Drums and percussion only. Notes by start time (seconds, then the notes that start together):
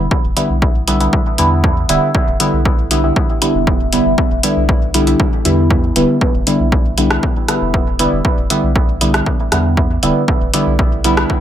0.11 kick
0.37 closed hi-hat
0.62 kick
0.88 closed hi-hat
1.00 closed hi-hat
1.13 kick
1.38 closed hi-hat
1.64 kick
1.89 closed hi-hat
2.15 kick
2.40 closed hi-hat
2.65 kick
2.91 closed hi-hat
3.16 kick
3.42 closed hi-hat
3.67 kick
3.93 closed hi-hat
4.18 kick
4.43 closed hi-hat
4.69 kick
4.94 closed hi-hat
5.07 closed hi-hat
5.20 kick
5.45 closed hi-hat
5.70 kick
5.96 closed hi-hat
6.21 kick
6.47 closed hi-hat
6.72 kick
6.98 closed hi-hat
7.11 cross-stick
7.23 kick
7.48 cross-stick, closed hi-hat
7.74 kick
7.99 closed hi-hat
8.25 kick
8.50 closed hi-hat
8.76 kick
9.01 closed hi-hat
9.14 cross-stick, closed hi-hat
9.26 kick
9.52 cross-stick, closed hi-hat
9.77 kick
10.03 closed hi-hat
10.28 kick
10.54 closed hi-hat
10.79 kick
11.04 closed hi-hat
11.17 cross-stick
11.30 kick